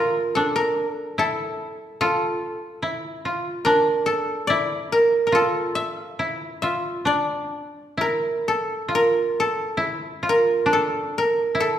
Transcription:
Already playing: F4 A#4
0.35 D4 A4
0.56 A#4
0.89 A4
1.18 E4 A4
2.01 F4 A4
2.82 E4
3.25 F4
3.65 D4 A#4
4.06 A4
4.47 E4 D5
4.92 A#4
5.27 A#4
5.32 F4 A4
5.75 E5
5.95 F5
6.19 E4
6.62 F4 E5
7.05 D4 D5
7.97 E4 A#4
8.48 A4
8.88 F4
8.95 A#4
9.40 A4
9.77 E4
9.95 F4
10.23 F4
10.29 A#4
10.66 D4
10.73 A4
11.18 A#4
11.55 E4
11.60 A4

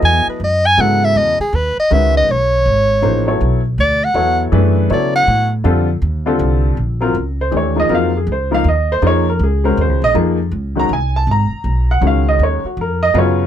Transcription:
Already playing: F#3 B3 E4 A4 D#5
0.02 E2 G#5
0.27 B4, muted upright bass stroke
0.40 F#2
0.44 D#5
0.66 G#5
0.78 G#2 C#3 F#3 B3 E4 A4 F#5
1.05 E5
1.15 E2 D#5
1.39 G#4, muted upright bass stroke
1.53 D#2 B4
1.78 D#5, muted upright bass stroke
1.90 C#2 D#3 G#3 C#4 F#4 B4 E5
2.17 D#5
2.28 B1 C#5
2.66 G#1
3.02 A1 F3 A#3 D#4 G#4 C5
3.27 F#3 B3 E4 A4 C#5
3.41 B1
3.78 D2 D5
4.05 F#5
4.14 E2 F#3 B3 E4 A4 C#5
4.52 F#2 E3 A3 D4 G#4 B4
4.90 C#3 F#3 B3 E4 A4 C#5 D5
5.16 F#5
5.27 A2
5.64 F2 D3 G3 C4 F4 A4
6.02 D#2
6.26 D3 G3 C4 F4 A4
6.39 C2
6.77 A#1
7.01 F#3 C4 F4 A#4
7.15 C#2
7.41 C5
7.51 D#2 E3 A3 D4 G4
7.57 C#5
7.76 F3 A#3 D#4 G#4 D#5
7.89 F2 F#3 C4 F4 A#4
7.95 F5
8.17 G#4
8.27 C#2
8.32 C5
8.51 F3 A#3 D#4 A#4 F5
8.64 D#2
8.68 D#5
8.92 C5
9.02 F2 F3 A#3 D#4 G#4
9.07 C#5
9.29 A#4
9.39 C#2
9.43 G#4
9.64 G#3 C#4 F#4 A#4 C5
9.77 D#2 C5
9.89 C#2
10.02 A#1 D#5
10.14 F2 F3 A#3 D#4 G#4
10.52 C#2
10.76 D#3 G#3 C#4 F#4 A#5
10.89 C2 G#5
11.16 A5
11.27 G#1
11.31 A#5
11.51 muted upright bass stroke
11.64 B1
11.91 F#5
12.01 C#2 D#3 G#3 C#4 F#4
12.07 F5
12.29 D#5
12.39 D#2
12.43 C#5
12.64 F#4, muted upright bass stroke
12.77 F2
12.81 A#4
13.03 D#5
13.14 F#2 C#3 F#3 B3 F4
13.18 C#5

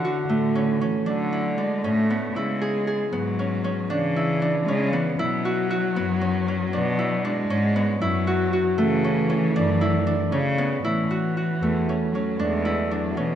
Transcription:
Already playing: D3 A3 B3 C#4 E4
0.04 D3 F#4
0.29 A2 A3
0.55 C#4
0.80 E3 C#4
1.06 D3 F#3 D4
1.33 E4
1.57 G#3 D4
1.83 A2 A3 C#4
2.10 B3
2.35 C#3 G#3 E4
2.62 G#4
2.87 G#4
3.12 G#2 F#3 B3
3.39 C#4
3.64 C#4
3.89 C#3 E3 D4
4.16 E4
4.42 D4
4.66 C#3 G#3 C#4
4.92 E3 B3
5.17 B2 F#3 E4
5.45 F#4
5.70 F#4
5.96 F#2 B3
6.21 C#4
6.48 C#4
6.72 B2 D4
6.99 E4
7.24 G#3 D4
7.49 G#2 C#4
7.76 B3
8.01 F#2 F#3 E4
8.27 F#4
8.53 F#4
8.77 C#3 E3 A3
9.04 C#4
9.30 C#4
9.56 F#2 D4
9.81 E4
10.07 D4
10.32 C#3 C#4
10.58 B3
10.83 A2 E3 E4
11.11 F#4
11.37 F#4
11.62 E2 A3
11.89 C#4
12.12 F#3 C#4
12.37 E2 G#3 D4
12.65 E4
12.90 F#3 D4
13.15 B2 E3 C#4

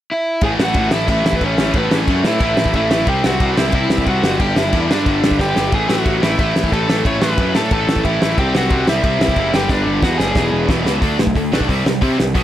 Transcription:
0.12 E4 E5
0.41 A1 A2 E3 A3 G#4, kick, crash
0.45 G#5
0.59 A1 F#4, snare
0.64 F#5
0.74 A1 A2 E3 A3, kick, crash
0.91 A1 E3 A3 E4 E5, snare
0.95 A2
1.08 A1 A2 E3 A3 E4 E5, kick, crash
1.25 A1, snare
1.33 B4, kick
1.41 A1 A2 E3 A3 C#4, kick, crash
1.46 C#5
1.57 A1 A2 E3 A3, snare
1.74 A1 A2 B3, kick, crash
1.78 E3 A3 B4
1.91 A1, snare
1.95 C#4 C#5
2.08 F#2 A2 E3 A3, kick, crash
2.24 A2 E3 A3 E4, snare
2.28 E5
2.40 A1 A2 E3 A3, kick, crash
2.57 A1, snare
2.66 kick
2.74 A1 A2 E3 A3 E4 E5, kick, crash
2.91 A1 A2 E3 A3, snare
3.07 C2 C3 G3 C4 G4 G5, kick, crash
3.24 C2 F#4 F#5, snare
3.40 C2 C3 G3 C4, kick, crash
3.57 C2 C3 G3 C4 E4 E5, snare
3.72 C2 C3 G3 C4 E4 E5, kick, crash
3.90 C2, snare
3.98 kick
4.07 C2 C3 G3 C4 F#4 F#5, kick, crash
4.22 G1 G2 D3 G3, snare
4.40 G1 G2 D3 G3 G4 G5, kick, crash
4.56 G1 E4 E5, snare
4.73 E2 G2 D3 G3, kick, crash
4.89 G2 D3 G3 D4 D5, snare
5.06 G1 G2 D3 G3, kick, crash
5.24 G1, snare
5.31 kick
5.39 G1 G2 D3 G3 G4 G5, kick, snare
5.56 G1 G2 D3 G3, snare
5.72 A1 A2 E3 A3 G#4 G#5, kick, crash
5.89 A1 F#4 F#5, snare
6.06 A1 A2 E3 A3, kick, crash
6.22 A1 A2 E3 A3 E4 E5, snare
6.39 A1 A2 E3 A3 E4 E5, kick, crash
6.56 A1, snare
6.64 kick
6.72 A1 A2 E3 A3 A4 A5, kick, crash
6.89 A1 A2 E3 A3, snare
7.05 A1 A2 E3 A3 C#5 C#6, kick, crash
7.22 A1 B4 B5, snare
7.37 F#2 A2 E3 A3, kick, crash
7.54 A2 E3 A3 A4 A5, snare
7.71 A1 A2 E3 A3 A4 A5, kick, crash
7.88 A1, snare
7.96 kick
8.05 A1 A2 E3 A3 E4 E5, kick, crash
8.22 A1 A2 E3 A3, snare
8.38 C2 C3 G3 C4 G4 G5, kick, crash
8.55 C2 F#4 F#5, snare
8.70 C2 C3 G3 C4, kick, crash
8.88 C2 C3 G3 C4 E4 E5, snare
9.04 C2 C3 G3 C4, kick, crash
9.20 C2 E4 E5, snare
9.28 kick
9.36 F#1 C3 G3 C4, kick, crash
9.53 G1 G2 D3 G3 G4 G5, snare
9.69 G1 G2 D3 G3 D4 D5, kick, snare
9.85 G1
10.02 E2 G2 D3 G3 F#4 F#5, kick, snare
10.18 F#1 G2 D3 G3 G#4 G#5, snare
10.35 E1 E2 B2 E3, kick, snare
10.52 E1
10.68 E1 E2 B2 E3, kick, snare
10.84 C#2 E2 B2 E3, snare
11.02 D2 D3 A3 D4, kick, open hi-hat
11.19 B1 D3 A3, snare
11.27 kick
11.36 D2 D3 A3, kick, open hi-hat
11.52 B1 D3 A3 D4, snare
11.61 kick
11.69 C2 C3 G3 C4, kick, open hi-hat
11.85 C2 C3 G3, snare
12.01 C3 G3 C4, kick, open hi-hat
12.18 C2 C3 G3, snare
12.35 B1 B2 F#3 B3, kick, open hi-hat

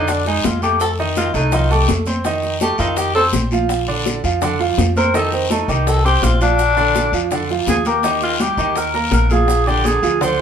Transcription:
Already playing: F2 D3 D4 D#4 D5
0.08 D4, high bongo, high conga, long guiro, maracas
0.26 G#3 D#4 G#4 G#5, high bongo, high conga, maracas
0.44 F2 F4, high bongo, low bongo, high conga, short guiro, maracas
0.62 A3 G4 A4 A5, high conga, short guiro, maracas
0.80 A4, high bongo, long guiro, maracas
0.99 D#3 D#4 D#5, high bongo, high conga, maracas
1.16 F4, high bongo, high conga, short guiro, maracas
1.34 C2 A3 D#4 A4 A5, high bongo, short guiro, maracas
1.52 D#3 D#4 F4 D#5, high bongo, high conga, low conga, long guiro, maracas
1.70 A3 G4 A4 A5, high bongo, high conga, low conga, maracas
1.88 F2, high bongo, low bongo, high conga, short guiro, maracas
2.06 C4 C5 C6, high conga, short guiro, maracas
2.24 D#3 D#4 D#5, high bongo, high conga, long guiro, maracas
2.43 high bongo, high conga, maracas
2.60 A3 G4 A4 A5, high bongo, high conga, short guiro, maracas
2.78 F2 D#3 D#4 F4 D#5, high bongo, high conga, short guiro, maracas
2.96 G4, high bongo, high conga, long guiro, maracas
3.15 C4 A4 C5 C6, high bongo, high conga, maracas
3.33 A#1, high bongo, low bongo, high conga, short guiro, maracas
3.51 F3 F4 F5, high conga, short guiro, maracas
3.69 high bongo, high conga, long guiro, maracas
3.88 D3 D4 D5, high bongo, high conga, maracas
4.06 high bongo, high conga, short guiro, maracas
4.24 F2 F3 F4 F5, high bongo, high conga, short guiro, maracas
4.42 D3 D4 D5, high bongo, high conga, low conga, long guiro, maracas
4.60 F3 F4 F5, high bongo, high conga, low conga, maracas
4.78 F2, high bongo, low bongo, high conga, short guiro, maracas
4.96 C4 A#4 C5 C6, high conga, short guiro, maracas
5.14 D#3 D#4 A4 D#5, high bongo, high conga, long guiro, maracas
5.32 C4, high bongo, high conga, maracas
5.50 A3 D#4 A4 A5, high bongo, high conga, short guiro, maracas
5.68 C2 D#3 D#4 G4 D#5, high bongo, high conga, short guiro, maracas
5.87 A4, high bongo, high conga, long guiro, maracas
6.05 C4 G4 C5 C6, high bongo, high conga, maracas
6.22 A#1 F4, high bongo, low bongo, high conga, short guiro, maracas
6.41 F3 D4 F4 F5, high conga, short guiro, maracas
6.59 high bongo, high conga, long guiro, maracas
6.77 D3 D4 D5, high bongo, high conga, maracas
6.95 high bongo, high conga, short guiro, maracas
7.12 F2 F3 F4 F5, high bongo, high conga, short guiro, maracas
7.31 D3 D4 D5, high bongo, high conga, low conga, long guiro, maracas
7.50 F3 F4 F5, high bongo, high conga, maracas
7.67 D#2 G#4, high bongo, low bongo, high conga, short guiro, maracas
7.85 A#3 G4 A#4 A#5, high conga, short guiro, maracas
8.03 D#3 D#4 D#5, high bongo, high conga, long guiro, maracas
8.22 F4, high bongo, high conga, maracas
8.40 G3 G4 G5, high bongo, high conga, short guiro, maracas
8.57 D#2 D#3 D#4 D#5, high bongo, short guiro, maracas
8.75 A#4, high bongo, high conga, long guiro, maracas
8.94 A#3 A#4 A#5, high bongo, high conga, maracas
9.11 A#1 A#4, high bongo, low bongo, high conga, short guiro, maracas
9.30 F3 F4 G#4 F5, high conga, short guiro, maracas
9.48 high bongo, high conga, long guiro, maracas
9.66 D3 D4 G4 D5, high bongo, high conga, maracas
9.84 G#4, high bongo, high conga, short guiro, maracas
10.03 D2 F3 F4 F5, high bongo, high conga, short guiro, maracas
10.21 D3 D4 C5 D5, high bongo, high conga, low conga, long guiro, maracas

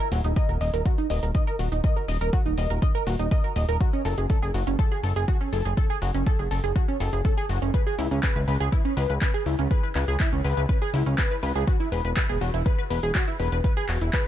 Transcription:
0.12 D#1 F#4, open hi-hat
0.24 D#1 D#4, closed hi-hat
0.36 D#5, kick, closed hi-hat
0.49 D#1 A#4, closed hi-hat
0.61 D#1 D#5, open hi-hat
0.74 D#1 A#4, closed hi-hat
0.86 F#4, kick, closed hi-hat
0.98 D#4, closed hi-hat
1.10 D#1 D#5, open hi-hat
1.23 D#1 A#4, closed hi-hat
1.35 D#5, kick, closed hi-hat
1.47 A#4, closed hi-hat
1.59 D#1 F#4, open hi-hat
1.72 D#1 D#4, closed hi-hat
1.84 D#5, kick, closed hi-hat
1.96 A#4, closed hi-hat
2.08 D#1 D#5, open hi-hat
2.21 D#1 A#4, closed hi-hat
2.33 F#4, kick, closed hi-hat
2.46 D#1 D#4, closed hi-hat
2.58 D#1 D#5, open hi-hat
2.70 D#1 A#4, closed hi-hat
2.82 D#5, kick, closed hi-hat
2.95 A#4, closed hi-hat
3.07 D#1 F#4, open hi-hat
3.19 D#1 D#4, closed hi-hat
3.31 D#5, kick, closed hi-hat
3.44 A#4, closed hi-hat
3.56 D#1 D#5, open hi-hat
3.69 D#1 A#4, closed hi-hat
3.81 F#4, kick, closed hi-hat
3.93 C#4, closed hi-hat
4.05 F#1 A4, open hi-hat
4.18 F#1 G#4, closed hi-hat
4.30 A4, kick, closed hi-hat
4.42 F#1 G#4, closed hi-hat
4.54 F#1 F#4, open hi-hat
4.67 F#1 C#4, closed hi-hat
4.79 A4, kick, closed hi-hat
4.92 G#4, closed hi-hat
5.03 F#1 A4, open hi-hat
5.16 F#1 G#4, closed hi-hat
5.28 F#4, kick, closed hi-hat
5.41 C#4, closed hi-hat
5.53 F#1 A4, open hi-hat
5.65 F#1 G#4, closed hi-hat
5.77 A4, kick, closed hi-hat
5.90 G#4, closed hi-hat
6.02 F#1 F#4, open hi-hat
6.15 F#1 C#4, closed hi-hat
6.26 A4, kick, closed hi-hat
6.39 F#1 G#4, closed hi-hat
6.51 F#1 A4, open hi-hat
6.64 F#1 G#4, closed hi-hat
6.76 F#4, kick, closed hi-hat
6.88 C#4, closed hi-hat
7.00 F#1 A4, open hi-hat
7.13 F#1 G#4, closed hi-hat
7.25 A4, kick, closed hi-hat
7.37 G#4, closed hi-hat
7.49 F#1 F#4, open hi-hat
7.62 F#1 C#4, closed hi-hat
7.74 B4, kick, closed hi-hat
7.87 G#4, closed hi-hat
7.99 C#2 E4, open hi-hat
8.11 C#2 C#4, closed hi-hat
8.23 B4, kick, clap, closed hi-hat
8.36 C#2 B4, closed hi-hat
8.48 C#2 B4, open hi-hat
8.60 C#2 G#4, closed hi-hat
8.72 E4, kick, closed hi-hat
8.85 C#4, closed hi-hat
8.97 C#2 B4, open hi-hat
9.10 C#2 B4, closed hi-hat
9.21 B4, kick, clap, closed hi-hat
9.34 G#4, closed hi-hat
9.46 C#2 E4, open hi-hat
9.59 C#2 C#4, closed hi-hat
9.71 B4, kick, closed hi-hat
9.83 B4, closed hi-hat
9.95 C#2 B4, clap, open hi-hat
10.08 C#2 G#4, closed hi-hat
10.20 E4, kick, clap, closed hi-hat
10.33 C#2 C#4, closed hi-hat
10.44 C#2 B4, open hi-hat
10.57 C#2 B4, closed hi-hat
10.69 B4, kick, closed hi-hat
10.82 G#4, closed hi-hat
10.94 C#2 E4, open hi-hat
11.06 C#2 C#4, closed hi-hat
11.18 B4, kick, clap, closed hi-hat
11.31 B4, closed hi-hat
11.43 C#2 B4, open hi-hat
11.55 C#2 G#4, closed hi-hat
11.67 F#4, kick, closed hi-hat
11.80 E4, closed hi-hat
11.92 E1 B4, open hi-hat
12.05 E1 B4, closed hi-hat
12.17 B4, kick, clap, closed hi-hat
12.29 E1 G#4, closed hi-hat
12.41 E1 F#4, open hi-hat
12.54 E1 E4, closed hi-hat
12.66 B4, kick, closed hi-hat
12.78 B4, closed hi-hat
12.90 E1 B4, open hi-hat
13.03 E1 G#4, closed hi-hat
13.15 F#4, kick, clap, closed hi-hat
13.28 E4, closed hi-hat
13.40 E1 B4, open hi-hat
13.52 E1 B4, closed hi-hat
13.64 B4, kick, closed hi-hat
13.77 G#4, closed hi-hat
13.89 E1 F#4, clap, open hi-hat
14.01 E1 E4, closed hi-hat
14.13 B4, kick, clap, closed hi-hat

